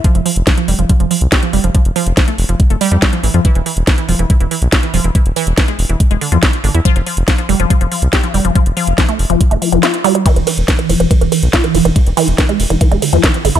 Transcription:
<<
  \new Staff \with { instrumentName = "Synth arpeggio sound" } { \clef bass \time 4/4 \tempo 4 = 141 f16 f16 f16 r16 f16 f16 g16 f16 f16 f16 f16 r16 g'16 f16 g16 f16 | f16 r16 f16 r16 f16 a16 r16 f16 r16 a16 g16 g16 g16 f16 e16 f16 | e16 e16 e16 r16 e16 e16 f16 e16 e16 e16 e16 r16 f'16 e16 f16 e16 | e16 r16 e16 r16 e16 gis16 r16 e16 r16 gis16 d16 f16 e16 r16 d16 e'16 |
f16 f16 f16 r16 f16 f16 g16 f16 f16 f16 f16 r16 g'16 f16 g16 f16 | f16 r16 f16 r16 f16 a16 r16 f16 r16 a16 f16 f16 f'16 r16 g16 g16 | e16 e16 e16 r16 e16 e16 f16 e16 e16 e16 e16 r16 f'16 e16 f16 e16 | r8 e16 r16 e16 gis16 r16 e16 e16 gis16 d16 f16 e16 r16 d16 e'16 | }
  \new Staff \with { instrumentName = "Analog synth bass" } { \clef bass \time 4/4 r16 f,,16 r16 f,,16 r8 f,,16 f,,16 r16 f,,16 r16 c,16 r8 f,,16 f,,16 | r16 f,,16 r16 f,,16 r8 f,,16 f,,16 r16 f,,16 r16 f,16 r8 a,,16 f,16 | r16 e,,16 r16 e,,16 r8 e,,16 e,,16 r16 e,,16 r16 b,,16 r8 e,,16 e,,16 | r16 e,,16 r16 e,,16 r8 e,,16 e,,16 r16 e,,16 r16 e,16 r8 gis,,16 e,16 |
r16 f,,16 r16 f,,16 r8 f,,16 f,,16 r16 f,,16 r16 c,16 r8 f,,16 f,,16 | r16 f,,16 r16 f,,16 r8 f,,16 f,,16 r16 f,,16 r16 f,,16 r4 | r16 e,,16 r16 e,,16 r8 e,,16 e,,16 r16 e,,16 r16 b,,16 r8 e,,16 e,,16 | r16 e,,16 r16 e,,16 r8 e,,16 e,,16 r16 e,,16 r16 e,16 r8 gis,,16 e,16 | }
  \new DrumStaff \with { instrumentName = "Drums" } \drummode { \time 4/4 <hh bd>16 hh16 hho16 hh16 <hh bd sn>16 hh16 hho16 hh16 <hh bd>16 hh16 hho16 hh16 <hh bd sn>16 hh16 hho16 hh16 | <hh bd>16 hh16 hho16 hh16 <hh bd sn>16 hh16 hho16 hh16 <hh bd>16 hh16 hho16 hh16 <hh bd sn>16 hh16 hho16 hh16 | <hh bd>16 hh16 hho16 hh16 <hh bd sn>16 hh16 hho16 hh16 <hh bd>16 hh16 hho16 hh16 <hh bd sn>16 hh16 hho16 hh16 | <hh bd>16 hh16 hho16 hh16 <hh bd sn>16 hh16 hho16 hh16 <hh bd>16 hh16 hho16 hh16 <hh bd sn>16 hh16 hho16 hh16 |
<hh bd>16 hh16 hho16 hh16 <hh bd sn>16 hh16 hho16 hh16 <hh bd>16 hh16 hho16 hh16 <hh bd sn>16 hh16 hho16 hh16 | <hh bd>16 hh16 hho16 hh16 <hh bd sn>16 hh16 hho16 hh16 <hh bd>16 hh16 hho16 hh16 <hh sn>16 hh16 hho16 hh16 | <hh bd cymr>16 hh16 <hho cymr>16 hh16 <hh bd cymr sn>16 hh16 <hho cymr>16 hh16 <hh bd cymr>16 hh16 <hho cymr>16 hh16 <hh bd cymr sn>16 hh16 <hho cymr>16 hh16 | <hh bd cymr>16 hh16 <hho cymr>16 hh16 <hh bd cymr sn>16 hh16 <hho cymr>16 hh16 <hh bd cymr>16 hh16 <hho cymr>16 hh16 <hh bd cymr sn>16 hh16 <hho cymr>16 hh16 | }
>>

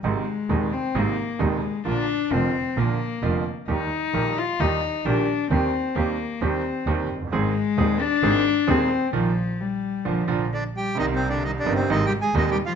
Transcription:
<<
  \new Staff \with { instrumentName = "Bandoneon" } { \time 4/4 \key bes \mixolydian \tempo 4 = 132 r1 | r1 | r1 | r1 |
r1 | r2. <d' d''>8 <g' g''>8 | \key c \minor \tuplet 3/2 { <ees' ees''>8 <c' c''>8 <d' d''>8 <ees' ees''>8 <d' d''>8 <c' c''>8 <ees' ees''>8 <g' g''>8 <aes' aes''>8 <ees' ees''>8 <g' g''>8 <f' f''>8 } | }
  \new Staff \with { instrumentName = "Cello" } { \clef bass \time 4/4 \key bes \mixolydian aes4. c'8 bes4 aes4 | d'4 c'4 bes4. r8 | ees'4. f'8 ees'4 d'4 | c'4 bes4 c'4. r8 |
aes4. d'4. c'4 | f4 g4 f4 d8 g8 | \key c \minor \tuplet 3/2 { ees8 c8 d8 ees8 d8 c8 ees8 g8 aes8 ees8 g8 f8 } | }
  \new Staff \with { instrumentName = "Grand piano" } { \clef bass \time 4/4 \key bes \mixolydian <aes,, aes, c ees aes ees'>8 r8 <ees,, ees, c ees aes ees'>8 r8 <aes,, aes, c ees aes ees'>8 r8 <ees,, ees, c ees aes ees'>8 r8 | <bes,, bes, d f bes f'>8 r8 <f,, f, d f bes f'>8 r8 <bes,, bes, d f bes f'>8 r8 <f,, f, d f bes f'>8 r8 | <ees, ees g bes g'>8 r8 <bes,, bes, ees g bes g'>8 r8 <ees, ees g bes g'>8 r8 <bes,, bes, ees g bes g'>8 r8 | <ees, ees g c' g'>8 r8 <ees, ees g c' g'>8 r8 <ees, ees g c' g'>8 r8 <ees, ees g c' g'>8 r32 f,,32 ges,,32 g,,32 |
<aes,, aes, ees aes c' aes'>8 r8 <ees,, ees, ees aes c' aes'>8 r8 <aes,, aes, ees aes c' aes'>8 r8 <ees,, ees, ees aes c' aes'>8 r8 | <bes, ees f>8 r4. <bes, d f>8 <bes, d f>8 r4 | \key c \minor <c, c g bes ees'>4. <g,, g, c g bes ees'>8 <aes,, aes, c aes bes ees'>8 r8 <ees,, ees, c aes bes ees'>8 r8 | }
  \new Staff \with { instrumentName = "Double bass" } { \clef bass \time 4/4 \key bes \mixolydian aes,,8 r8 ees,8 r8 aes,,8 r8 ees,8 r8 | bes,,8 r8 f,,8 r8 bes,,8 r8 f,,8 r8 | ees,8 r8 bes,,8 r8 ees,8 r8 bes,,8 r8 | ees,8 r8 ees,8 r8 ees,8 r8 ees,8 ges,,8 |
aes,,8 r8 ees,8 r8 aes,,8 r8 ees,8 r8 | bes,,8 r4. bes,,8 bes,,8 r4 | \key c \minor c,4. g,,8 aes,,8 r8 ees,8 r8 | }
>>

